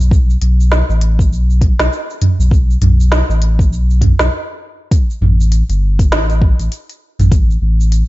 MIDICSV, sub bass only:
0, 0, Header, 1, 2, 480
1, 0, Start_track
1, 0, Tempo, 600000
1, 94, Time_signature, 4, 2, 24, 8
1, 6465, End_track
2, 0, Start_track
2, 0, Title_t, "Sub bass"
2, 0, Program_c, 0, 38
2, 0, Note_on_c, 0, 35, 80
2, 295, Note_off_c, 0, 35, 0
2, 330, Note_on_c, 0, 35, 93
2, 661, Note_off_c, 0, 35, 0
2, 713, Note_on_c, 0, 33, 85
2, 1051, Note_on_c, 0, 35, 92
2, 1063, Note_off_c, 0, 33, 0
2, 1381, Note_off_c, 0, 35, 0
2, 1430, Note_on_c, 0, 35, 104
2, 1508, Note_off_c, 0, 35, 0
2, 1912, Note_on_c, 0, 35, 79
2, 2216, Note_off_c, 0, 35, 0
2, 2249, Note_on_c, 0, 35, 96
2, 2581, Note_off_c, 0, 35, 0
2, 2632, Note_on_c, 0, 33, 86
2, 2972, Note_on_c, 0, 35, 99
2, 2984, Note_off_c, 0, 33, 0
2, 3302, Note_off_c, 0, 35, 0
2, 3352, Note_on_c, 0, 35, 100
2, 3429, Note_off_c, 0, 35, 0
2, 4170, Note_on_c, 0, 33, 105
2, 4501, Note_off_c, 0, 33, 0
2, 4553, Note_on_c, 0, 31, 94
2, 4892, Note_on_c, 0, 33, 98
2, 4904, Note_off_c, 0, 31, 0
2, 5222, Note_off_c, 0, 33, 0
2, 5270, Note_on_c, 0, 33, 99
2, 5348, Note_off_c, 0, 33, 0
2, 5752, Note_on_c, 0, 33, 79
2, 6056, Note_off_c, 0, 33, 0
2, 6091, Note_on_c, 0, 33, 103
2, 6421, Note_off_c, 0, 33, 0
2, 6465, End_track
0, 0, End_of_file